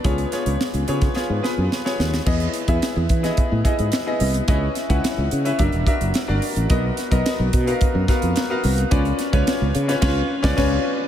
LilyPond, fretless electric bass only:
\new Staff \with { instrumentName = "Fretless electric bass" } { \clef bass \time 4/4 \key cis \phrygian \tempo 4 = 108 cis,8 r16 cis,16 r16 cis,16 cis8 r16 gis,16 r16 fis,16 r8 dis,8 | e,8 r16 e,16 r16 e,16 e8 r16 a,16 r16 gis,16 r8 bis,,8 | cis,8 r16 cis,16 r16 cis,16 cis8 fis,,16 e,,16 r16 fis,,16 r16 g,,16 r16 a,,16 | b,,8 r16 b,,16 r16 b,,16 b,8 r16 fis,16 r16 eis,16 r8 bis,,8 |
cis,8 r16 cis,16 r16 cis,16 cis8 cis,8 r16 cis,16 cis,8 r8 | }